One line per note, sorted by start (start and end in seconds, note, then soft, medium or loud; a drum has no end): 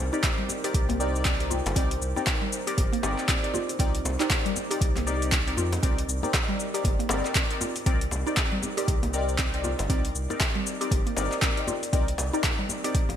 0.00 0.10 C2 medium
0.00 13.16 C4 medium
0.00 13.16 D#4 medium
0.00 13.16 A#4 medium
0.00 5.82 C5 medium
0.13 0.60 C4 medium
0.13 0.19 D#4 medium
0.13 0.60 D#4 medium
0.13 0.60 G4 medium
0.13 0.60 A#4 medium
0.13 0.60 D5 medium
0.13 shaker soft
0.23 kick loud
0.23 clap loud
0.23 closed hi-hat medium
0.23 djembe slap medium
0.23 shaker soft
0.38 0.44 G3 medium
0.49 djembe tone medium
0.49 shaker medium
0.64 0.80 C4 medium
0.64 0.80 D#4 medium
0.64 0.70 G4 loud
0.64 0.80 G4 medium
0.64 0.80 A#4 medium
0.64 0.80 D5 medium
0.64 closed hi-hat soft
0.64 shaker medium
0.74 1.61 C2 loud
0.74 kick loud
0.74 closed hi-hat medium
0.74 shaker soft
0.89 0.95 A#3 medium
0.89 closed hi-hat soft
0.89 djembe tone medium
1.00 1.37 C4 medium
1.00 1.37 D#4 medium
1.00 1.37 G4 medium
1.00 1.37 A#4 medium
1.00 1.37 D5 loud
1.00 shaker medium
1.16 shaker soft
1.25 1.33 C4 medium
1.25 kick loud
1.25 clap loud
1.25 closed hi-hat medium
1.25 shaker soft
1.40 1.57 C4 medium
1.40 1.57 D#4 medium
1.40 1.56 G4 medium
1.40 1.57 A#4 medium
1.40 1.57 D5 medium
1.40 closed hi-hat soft
1.50 1.65 F4 medium
1.50 djembe tone medium
1.50 shaker medium
1.66 1.74 G1 loud
1.66 closed hi-hat soft
1.66 djembe slap medium
1.66 shaker medium
1.76 1.98 C2 loud
1.76 1.89 C4 medium
1.76 1.89 C4 loud
1.76 1.89 D#4 medium
1.76 1.89 G4 medium
1.76 1.89 A#4 medium
1.76 1.89 D5 loud
1.76 kick loud
1.76 closed hi-hat medium
1.76 shaker soft
1.91 closed hi-hat soft
2.02 2.14 C2 medium
2.02 shaker medium
2.16 2.64 C4 medium
2.16 2.22 D#4 medium
2.16 2.64 D#4 medium
2.16 2.64 G4 medium
2.16 2.64 A#4 medium
2.16 2.64 D5 medium
2.16 djembe tone medium
2.16 shaker medium
2.27 kick loud
2.27 clap loud
2.27 closed hi-hat medium
2.27 djembe slap loud
2.27 shaker soft
2.42 2.47 G3 medium
2.53 shaker medium
2.67 2.84 C4 medium
2.67 2.84 D#4 medium
2.67 2.73 G4 loud
2.67 2.84 G4 medium
2.67 2.84 A#4 medium
2.67 2.84 D5 medium
2.67 closed hi-hat soft
2.67 shaker medium
2.78 2.90 G1 loud
2.78 kick loud
2.78 closed hi-hat medium
2.78 djembe tone medium
2.78 shaker soft
2.93 2.98 A#3 medium
2.93 closed hi-hat soft
3.03 3.16 G1 medium
3.03 3.40 C4 medium
3.03 3.40 D#4 medium
3.03 3.40 G4 medium
3.03 3.40 A#4 medium
3.03 3.40 D5 loud
3.03 djembe slap medium
3.03 shaker medium
3.19 clap soft
3.19 shaker soft
3.28 3.36 C4 medium
3.28 kick loud
3.28 clap loud
3.28 closed hi-hat medium
3.28 shaker soft
3.43 3.60 C4 medium
3.43 3.60 D#4 medium
3.43 3.60 G4 medium
3.43 3.60 A#4 medium
3.43 3.60 D5 medium
3.43 closed hi-hat soft
3.54 3.68 F4 medium
3.54 djembe tone medium
3.54 shaker medium
3.69 closed hi-hat soft
3.69 shaker medium
3.79 4.01 C2 loud
3.79 3.93 C4 medium
3.79 3.93 C4 loud
3.79 3.93 D#4 medium
3.79 3.93 G4 medium
3.79 3.92 A#4 medium
3.79 3.93 D5 loud
3.79 kick loud
3.79 closed hi-hat medium
3.79 shaker soft
3.95 closed hi-hat soft
4.05 4.17 C2 medium
4.05 djembe slap medium
4.05 shaker medium
4.20 4.67 C4 medium
4.20 4.25 D#4 medium
4.20 4.67 D#4 medium
4.20 4.67 G4 medium
4.20 4.67 A#4 medium
4.20 4.67 D5 medium
4.20 clap medium
4.20 closed hi-hat soft
4.20 shaker medium
4.30 kick loud
4.30 clap loud
4.30 closed hi-hat medium
4.30 djembe slap loud
4.30 shaker soft
4.45 4.51 G3 medium
4.45 closed hi-hat soft
4.56 djembe tone medium
4.56 shaker medium
4.71 4.87 C4 medium
4.71 4.87 D#4 medium
4.71 4.76 G4 loud
4.71 4.87 G4 medium
4.71 4.87 A#4 medium
4.71 4.87 D5 medium
4.71 closed hi-hat soft
4.71 shaker medium
4.81 5.54 C2 loud
4.81 kick loud
4.81 closed hi-hat medium
4.81 shaker soft
4.96 5.02 A#3 medium
4.96 clap soft
4.96 closed hi-hat soft
4.96 djembe tone medium
5.07 5.44 C4 medium
5.07 5.44 D#4 medium
5.07 5.44 G4 medium
5.07 5.44 A#4 medium
5.07 5.44 D5 medium
5.07 shaker medium
5.22 closed hi-hat soft
5.22 shaker soft
5.32 5.40 C4 medium
5.32 kick loud
5.32 clap loud
5.32 closed hi-hat medium
5.32 shaker soft
5.47 5.63 C4 medium
5.47 5.63 D#4 medium
5.47 5.63 G4 medium
5.47 5.63 A#4 medium
5.47 5.63 D5 medium
5.47 closed hi-hat soft
5.57 5.79 F2 medium
5.57 5.72 F4 medium
5.57 djembe tone medium
5.57 shaker medium
5.72 closed hi-hat soft
5.72 djembe slap medium
5.72 shaker medium
5.83 6.04 C2 loud
5.83 5.96 C4 medium
5.83 5.96 C4 loud
5.83 5.96 D#4 medium
5.83 5.96 G4 medium
5.83 5.96 A#4 medium
5.83 13.16 D5 medium
5.83 5.96 D5 loud
5.83 kick loud
5.83 closed hi-hat medium
5.83 shaker soft
5.98 closed hi-hat soft
6.08 6.21 C2 medium
6.08 shaker medium
6.23 6.70 C4 medium
6.23 6.70 D#4 medium
6.23 6.29 D#4 medium
6.23 6.70 G4 medium
6.23 6.70 A#4 medium
6.23 6.70 D5 medium
6.23 djembe tone medium
6.23 shaker medium
6.34 kick loud
6.34 clap loud
6.34 closed hi-hat medium
6.34 djembe slap loud
6.34 shaker soft
6.49 6.54 G3 medium
6.60 shaker medium
6.74 6.90 C4 medium
6.74 6.90 D#4 medium
6.74 6.80 G4 loud
6.74 6.90 G4 medium
6.74 6.90 A#4 medium
6.74 6.90 D5 medium
6.74 closed hi-hat soft
6.74 shaker medium
6.84 6.97 G1 medium
6.84 kick loud
6.84 closed hi-hat medium
6.84 djembe tone medium
6.84 shaker soft
6.99 7.05 A#3 medium
6.99 closed hi-hat soft
7.09 7.22 G1 medium
7.09 7.47 C4 medium
7.09 7.47 D#4 medium
7.09 7.47 G4 medium
7.09 7.47 A#4 medium
7.09 7.47 D5 loud
7.09 djembe slap loud
7.09 shaker medium
7.25 clap soft
7.25 shaker medium
7.35 7.44 C4 medium
7.35 kick loud
7.35 clap loud
7.35 closed hi-hat medium
7.35 shaker soft
7.51 7.67 C4 medium
7.51 7.67 D#4 medium
7.51 7.67 G4 medium
7.51 7.67 A#4 medium
7.51 7.67 D5 medium
7.51 closed hi-hat soft
7.61 7.75 F4 medium
7.61 djembe tone medium
7.61 shaker loud
7.76 closed hi-hat soft
7.76 shaker medium
7.86 8.08 C2 loud
7.86 7.99 C4 loud
7.86 8.00 C4 medium
7.86 7.99 D#4 medium
7.86 7.99 G4 medium
7.86 7.99 A#4 medium
7.86 7.99 D5 loud
7.86 kick loud
7.86 closed hi-hat medium
7.86 shaker soft
8.01 closed hi-hat soft
8.11 8.24 C2 medium
8.11 djembe slap medium
8.11 shaker medium
8.27 8.74 C4 medium
8.27 8.32 D#4 medium
8.27 8.74 D#4 medium
8.27 8.74 G4 medium
8.27 8.74 A#4 medium
8.27 8.74 D5 medium
8.27 shaker medium
8.37 kick loud
8.37 clap loud
8.37 closed hi-hat medium
8.37 djembe slap loud
8.37 shaker soft
8.52 8.58 G3 medium
8.62 djembe tone medium
8.62 shaker medium
8.77 8.94 C4 medium
8.77 8.94 D#4 medium
8.77 8.83 G4 loud
8.77 8.94 G4 medium
8.77 8.94 A#4 medium
8.77 8.94 D5 medium
8.77 closed hi-hat soft
8.77 shaker medium
8.88 9.75 C2 medium
8.88 kick loud
8.88 closed hi-hat medium
8.88 shaker soft
9.03 9.09 A#3 medium
9.03 closed hi-hat soft
9.03 djembe tone medium
9.13 9.50 C4 medium
9.13 9.50 D#4 medium
9.13 9.50 G4 medium
9.13 9.50 A#4 medium
9.13 9.50 D5 loud
9.13 shaker medium
9.29 shaker medium
9.39 9.47 C4 medium
9.39 kick loud
9.39 clap loud
9.39 closed hi-hat medium
9.39 shaker soft
9.54 9.70 C4 medium
9.54 9.70 D#4 medium
9.54 9.70 G4 medium
9.54 9.70 A#4 medium
9.54 9.70 D5 medium
9.54 closed hi-hat soft
9.64 9.78 F4 medium
9.64 djembe tone medium
9.64 shaker loud
9.79 9.88 G1 loud
9.79 closed hi-hat soft
9.79 djembe slap medium
9.79 shaker medium
9.90 10.11 C2 loud
9.90 10.03 C4 loud
9.90 10.03 C4 medium
9.90 10.03 D#4 medium
9.90 10.03 G4 medium
9.90 10.03 A#4 medium
9.90 10.03 D5 loud
9.90 kick loud
9.90 closed hi-hat medium
9.90 shaker soft
10.05 closed hi-hat soft
10.15 10.27 C2 medium
10.15 shaker loud
10.30 10.77 C4 medium
10.30 10.77 D#4 medium
10.30 10.36 D#4 medium
10.30 10.77 G4 medium
10.30 10.77 A#4 medium
10.30 10.77 D5 medium
10.30 djembe tone medium
10.30 shaker medium
10.40 kick loud
10.40 clap loud
10.40 closed hi-hat medium
10.40 djembe slap loud
10.40 shaker soft
10.55 10.61 G3 medium
10.67 shaker loud
10.81 10.97 C4 medium
10.81 10.97 D#4 medium
10.81 10.97 G4 medium
10.81 10.87 G4 loud
10.81 10.97 A#4 medium
10.81 10.97 D5 medium
10.81 closed hi-hat soft
10.81 shaker medium
10.91 11.04 G1 medium
10.91 kick loud
10.91 closed hi-hat medium
10.91 djembe tone medium
10.91 shaker soft
11.06 11.12 A#3 medium
11.06 closed hi-hat soft
11.17 11.29 G1 medium
11.17 11.54 C4 medium
11.17 11.54 D#4 medium
11.17 11.54 G4 medium
11.17 11.54 A#4 medium
11.17 11.54 D5 loud
11.17 djembe slap loud
11.17 shaker loud
11.32 clap soft
11.32 shaker medium
11.42 11.50 C4 medium
11.42 kick loud
11.42 clap loud
11.42 closed hi-hat medium
11.42 shaker soft
11.57 11.73 C4 medium
11.57 11.73 D#4 medium
11.57 11.73 G4 medium
11.57 11.73 A#4 medium
11.57 11.73 D5 medium
11.57 closed hi-hat soft
11.67 11.82 F4 medium
11.67 djembe tone medium
11.67 shaker loud
11.83 closed hi-hat soft
11.83 shaker medium
11.93 12.14 C2 loud
11.93 12.06 C4 loud
11.93 12.07 C4 medium
11.93 12.06 D#4 medium
11.93 12.06 G4 medium
11.93 12.06 A#4 medium
11.93 12.06 D5 loud
11.93 kick loud
11.93 closed hi-hat medium
11.93 shaker soft
12.08 closed hi-hat soft
12.18 12.31 C2 medium
12.18 djembe slap medium
12.18 shaker medium
12.33 12.81 C4 medium
12.33 12.39 D#4 medium
12.33 12.81 D#4 medium
12.33 12.81 G4 medium
12.33 12.81 A#4 medium
12.33 12.81 D5 medium
12.33 shaker medium
12.43 kick loud
12.43 clap loud
12.43 closed hi-hat medium
12.43 djembe slap loud
12.43 shaker soft
12.59 12.64 G3 medium
12.69 djembe tone medium
12.69 shaker medium
12.84 13.00 C4 medium
12.84 13.00 D#4 medium
12.84 13.00 G4 medium
12.84 12.90 G4 loud
12.84 13.00 A#4 medium
12.84 13.00 D5 medium
12.84 closed hi-hat soft
12.84 shaker medium
12.95 kick loud
12.95 closed hi-hat medium
12.95 shaker soft
13.09 13.16 A#1 medium
13.09 13.15 A#3 medium
13.09 closed hi-hat soft
13.09 djembe tone medium